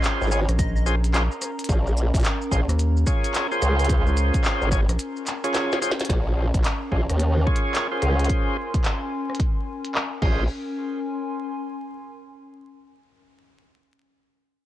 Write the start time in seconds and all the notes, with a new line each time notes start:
Already playing: C#4 F4 G#4 A#4 C5 A#5
0.04 clap, closed hi-hat, shaker
0.21 G#1, shaker
0.23 shaker
0.27 shaker
0.28 shaker
0.30 C#4 F4 G#4 C#5, shaker
0.31 shaker
0.49 A#1, cross-stick, closed hi-hat, shaker
0.59 D#5, kick, closed hi-hat, shaker
0.76 D#5, shaker
0.86 C#4 F4 G#4 C5, shaker
1.04 closed hi-hat, shaker
1.14 C#4 F4 G#4 C5, clap, closed hi-hat, shaker
1.32 shaker
1.42 cross-stick, closed hi-hat, shaker
1.59 closed hi-hat, shaker
1.64 closed hi-hat
1.69 A#1, kick, closed hi-hat, shaker
1.87 shaker
1.97 shaker
2.14 A#1, kick, closed hi-hat, shaker
2.16 closed hi-hat
2.20 closed hi-hat
2.21 closed hi-hat
2.23 clap, closed hi-hat
2.25 closed hi-hat, shaker
2.42 shaker
2.51 A#1 C#4 F4 G#4 C5, kick, shaker
2.69 D#2, cross-stick, closed hi-hat, shaker
2.79 closed hi-hat, shaker
2.97 shaker
3.06 C#4 F4 G#4 C#5, kick, shaker
3.24 closed hi-hat, shaker
3.35 clap, closed hi-hat, shaker
3.51 C#4 F4 G#4 C5, shaker
3.62 C#2, cross-stick, closed hi-hat, shaker
3.79 closed hi-hat, shaker
3.85 closed hi-hat
3.89 kick, closed hi-hat, shaker
4.06 C#2, shaker
4.17 closed hi-hat, shaker
4.34 kick, closed hi-hat, shaker
4.45 clap, shaker
4.61 G#1, shaker
4.71 C#4 F4 G#4 C#5, kick, closed hi-hat, shaker
4.89 A#1, cross-stick, closed hi-hat, shaker
4.99 closed hi-hat, shaker
5.17 shaker
5.27 clap, closed hi-hat, shaker
5.44 C#4 F4 G#4 C#5, closed hi-hat, shaker
5.55 snare, clap, closed hi-hat, shaker
5.72 snare, shaker
5.82 C#4 F4 G#4 C5, closed hi-hat, shaker
5.91 snare
6.00 snare, closed hi-hat, shaker
6.05 closed hi-hat
6.09 A#1 C#4, kick, snare, closed hi-hat
6.36 A#4
6.54 A#1, kick, closed hi-hat
6.64 clap, closed hi-hat
6.92 A#1 C#4 F4 G#4 C5 G#5, kick
7.10 D#2, cross-stick, closed hi-hat
7.20 closed hi-hat
7.36 C6
7.46 C#4 F4 G#4 C#5, kick
7.56 closed hi-hat
7.75 clap, closed hi-hat
7.92 C#4 F4 G#4 C5
8.02 C#2, cross-stick, closed hi-hat
8.19 closed hi-hat
8.24 closed hi-hat
8.29 kick, closed hi-hat
8.74 kick, closed hi-hat
8.85 clap, closed hi-hat
9.30 cross-stick
9.35 closed hi-hat
9.39 kick, closed hi-hat
9.85 closed hi-hat
9.95 clap
10.22 A#1 C#4 F4 G#4 C5, kick, crash
10.32 A#4
10.70 G#5
10.76 C6